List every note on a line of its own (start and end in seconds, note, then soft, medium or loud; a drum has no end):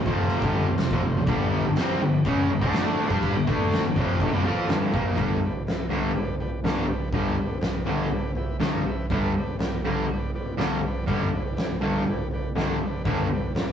0.06 0.42 F2 medium
0.06 0.43 C3 medium
0.06 0.43 F3 medium
0.06 0.26 C4 medium
0.06 0.25 F4 medium
0.06 0.25 C5 loud
0.06 kick loud
0.28 0.49 C4 medium
0.28 0.49 F4 medium
0.28 0.50 C5 loud
0.28 crash medium
0.42 0.67 G2 medium
0.42 0.67 D3 medium
0.42 0.67 G3 medium
0.42 kick loud
0.54 0.74 C4 medium
0.54 0.74 F4 medium
0.54 0.74 C5 loud
0.67 0.87 F2 medium
0.67 0.87 C3 medium
0.77 0.97 C4 loud
0.77 0.98 F4 loud
0.77 0.98 C5 loud
0.77 snare loud
0.77 crash medium
0.91 1.02 F2 medium
0.91 1.02 C3 loud
0.91 kick loud
1.02 1.16 F2 medium
1.02 1.16 C3 medium
1.02 1.23 C4 medium
1.02 1.22 F4 medium
1.02 1.23 C5 medium
1.18 1.28 F2 medium
1.18 1.28 C3 medium
1.26 1.64 G2 loud
1.26 1.64 D3 loud
1.26 1.46 D4 loud
1.26 1.46 G4 loud
1.26 1.47 B4 loud
1.26 kick loud
1.26 crash medium
1.30 1.64 G3 medium
1.50 1.70 D4 loud
1.50 1.71 G4 loud
1.50 1.71 B4 loud
1.66 1.77 G2 medium
1.66 1.76 D3 medium
1.76 2.00 C3 medium
1.76 2.01 G3 loud
1.76 2.01 C4 loud
1.76 1.96 D4 medium
1.76 1.96 G4 medium
1.76 1.96 B4 medium
1.76 snare loud
1.76 crash medium
2.00 2.20 G2 medium
2.00 2.20 D3 medium
2.00 2.21 D4 medium
2.00 2.21 G4 medium
2.00 2.21 B4 loud
2.24 2.49 C#3 loud
2.24 2.49 G#3 loud
2.24 2.49 C#4 loud
2.24 2.44 D4 medium
2.24 2.44 G4 medium
2.24 2.44 B4 medium
2.24 kick loud
2.24 crash medium
2.50 2.62 G2 medium
2.50 2.60 D3 medium
2.50 2.62 D4 medium
2.50 2.62 G4 medium
2.50 2.62 B4 loud
2.61 3.09 D3 medium
2.61 3.09 A3 medium
2.61 3.10 D4 loud
2.61 2.92 D4 medium
2.61 2.91 A4 medium
2.61 2.92 D5 loud
2.61 kick loud
2.73 snare loud
2.73 crash medium
2.99 3.11 D4 medium
2.99 3.11 A4 medium
2.99 3.11 D5 loud
3.09 3.33 G3 medium
3.09 3.34 D4 medium
3.09 3.34 G4 loud
3.09 3.40 G4 medium
3.09 3.40 B4 medium
3.09 3.40 D5 loud
3.09 kick loud
3.23 kick loud
3.23 crash medium
3.35 3.47 G2 medium
3.35 3.45 D3 medium
3.46 3.82 D3 medium
3.46 3.83 A3 loud
3.46 3.83 D4 loud
3.46 3.67 G4 loud
3.46 3.66 B4 loud
3.46 3.67 D5 loud
3.46 kick loud
3.72 3.91 G4 medium
3.72 3.91 B4 medium
3.72 3.91 D5 medium
3.72 snare loud
3.72 crash medium
3.84 3.96 G2 medium
3.84 3.96 D3 medium
3.95 4.20 F2 medium
3.95 4.20 C3 medium
3.95 4.20 F3 loud
3.95 4.15 G4 medium
3.95 4.16 B4 medium
3.95 4.15 D5 medium
3.95 kick loud
4.20 4.32 G2 medium
4.20 4.31 D3 loud
4.20 4.39 G4 medium
4.20 4.40 B4 medium
4.20 4.40 D5 loud
4.20 kick medium
4.20 crash medium
4.32 4.43 C3 medium
4.32 4.44 G3 medium
4.44 4.68 F3 medium
4.44 4.68 C4 medium
4.44 4.69 F4 loud
4.44 4.64 G4 medium
4.44 4.64 B4 medium
4.44 4.64 D5 medium
4.69 4.92 G2 loud
4.69 4.92 D3 loud
4.69 4.93 G3 loud
4.69 4.89 G4 loud
4.69 4.89 B4 loud
4.69 4.89 D5 loud
4.69 snare loud
4.69 crash medium
4.92 5.16 A#2 medium
4.92 5.17 F3 medium
4.92 5.17 A#3 loud
4.92 5.13 G4 medium
4.92 5.13 B4 medium
4.92 5.14 D5 medium
4.92 kick loud
5.16 5.37 G2 medium
5.16 5.37 D3 medium
5.16 5.37 G3 medium
5.16 5.38 G4 loud
5.16 5.38 B4 loud
5.16 kick loud
5.16 floor tom medium
5.21 5.39 D5 loud
5.43 5.63 G4 medium
5.43 5.63 B4 medium
5.43 5.63 D5 medium
5.43 floor tom medium
5.67 5.87 G4 medium
5.67 5.87 B4 medium
5.67 5.87 E5 medium
5.67 snare loud
5.67 floor tom medium
5.89 6.10 G2 medium
5.89 6.10 D3 medium
5.89 6.11 G3 loud
5.89 6.11 G4 medium
5.89 6.11 B4 medium
5.89 6.12 D5 medium
5.89 floor tom medium
6.15 6.35 G4 loud
6.15 6.35 B4 medium
6.15 6.36 D5 loud
6.15 floor tom medium
6.40 6.60 G4 medium
6.40 6.60 B4 medium
6.40 6.61 D5 medium
6.40 floor tom medium
6.64 6.84 G2 loud
6.64 6.84 D3 medium
6.64 6.84 G3 loud
6.64 6.84 G4 medium
6.64 6.84 B4 medium
6.64 6.84 D5 medium
6.64 snare loud
6.64 floor tom medium
6.87 7.09 G4 medium
6.87 7.09 B4 medium
6.87 7.09 D5 medium
6.87 floor tom medium
7.12 7.33 G2 medium
7.12 7.33 D3 medium
7.12 7.34 G3 medium
7.12 7.34 G4 loud
7.12 7.34 B4 loud
7.12 7.34 D5 loud
7.12 kick loud
7.12 floor tom medium
7.37 7.58 G4 medium
7.37 7.58 B4 medium
7.37 7.59 D5 medium
7.37 floor tom medium
7.61 7.82 G4 medium
7.61 7.82 B4 medium
7.61 7.82 D5 medium
7.61 snare loud
7.61 floor tom medium
7.85 8.07 G2 medium
7.85 8.07 D3 medium
7.85 8.07 G3 loud
7.85 8.06 G4 medium
7.85 8.06 B4 medium
7.85 8.07 D5 medium
7.85 floor tom medium
8.10 8.32 G4 medium
8.10 8.32 B4 loud
8.10 8.32 D5 loud
8.10 floor tom medium
8.35 8.57 G4 medium
8.35 8.57 B4 medium
8.35 8.57 E5 medium
8.35 floor tom medium
8.60 8.80 G2 loud
8.60 8.81 D3 medium
8.60 8.81 G3 loud
8.60 8.81 G4 medium
8.60 8.81 B4 medium
8.60 8.82 D5 medium
8.60 snare loud
8.60 floor tom medium
8.85 9.06 G4 medium
8.85 9.07 B4 medium
8.85 9.06 E5 loud
8.85 floor tom medium
9.10 9.30 G2 medium
9.10 9.31 D3 medium
9.10 9.31 G3 medium
9.10 9.31 G4 loud
9.10 9.31 B4 loud
9.10 9.31 D5 loud
9.10 kick loud
9.10 floor tom medium
9.35 9.56 G4 medium
9.35 9.57 B4 medium
9.35 9.57 D5 loud
9.35 floor tom medium
9.59 9.81 B4 medium
9.59 9.81 D5 medium
9.59 snare loud
9.59 floor tom medium
9.63 9.82 G4 medium
9.85 10.05 G2 loud
9.85 10.05 D3 loud
9.85 10.06 G3 medium
9.85 10.05 G4 medium
9.85 10.06 B4 medium
9.85 10.06 D5 medium
9.85 floor tom medium
10.10 10.31 G4 medium
10.10 10.31 B4 medium
10.10 10.31 D5 loud
10.10 floor tom medium
10.34 10.55 G4 medium
10.34 10.55 B4 medium
10.34 10.55 D5 medium
10.34 floor tom medium
10.58 10.78 G2 medium
10.58 10.79 D3 medium
10.58 10.79 G3 loud
10.58 10.78 G4 medium
10.58 10.78 B4 medium
10.58 10.78 D5 medium
10.58 snare loud
10.58 floor tom medium
10.83 11.05 G4 medium
10.83 11.05 B4 medium
10.83 11.05 D5 loud
10.83 floor tom medium
11.07 11.28 G2 medium
11.07 11.28 D3 medium
11.07 11.28 G3 medium
11.07 11.28 G4 loud
11.07 11.28 B4 medium
11.07 11.28 D5 loud
11.07 kick loud
11.07 floor tom medium
11.33 11.53 G4 medium
11.33 11.54 B4 medium
11.33 11.54 D5 medium
11.33 floor tom medium
11.55 11.76 G4 medium
11.55 11.77 B4 medium
11.55 11.77 D5 medium
11.55 snare loud
11.55 floor tom medium
11.81 12.02 G2 medium
11.81 12.02 D3 medium
11.81 12.02 G3 medium
11.81 12.03 G4 medium
11.81 12.03 B4 medium
11.81 floor tom medium
11.85 12.04 D5 medium
12.07 12.27 G4 loud
12.07 12.28 B4 medium
12.07 12.27 D5 loud
12.07 floor tom medium
12.31 12.53 G4 medium
12.31 12.53 B4 medium
12.31 12.53 D5 medium
12.31 floor tom medium
12.55 12.76 G2 medium
12.55 12.76 D3 medium
12.55 12.76 G3 loud
12.55 12.77 G4 medium
12.55 12.77 B4 medium
12.55 12.77 D5 medium
12.55 snare loud
12.55 floor tom medium
12.81 13.02 G4 medium
12.81 13.03 B4 medium
12.81 13.02 D5 medium
12.81 floor tom medium
13.04 13.26 G2 medium
13.04 13.26 D3 medium
13.04 13.26 G3 loud
13.04 13.26 G4 loud
13.04 13.25 B4 loud
13.04 13.26 D5 loud
13.04 kick loud
13.04 floor tom medium
13.30 13.52 G4 medium
13.30 13.52 D5 medium
13.30 floor tom medium
13.35 13.53 B4 medium
13.55 13.72 G4 medium
13.55 13.72 B4 medium
13.55 13.72 D5 medium
13.55 snare loud
13.55 floor tom medium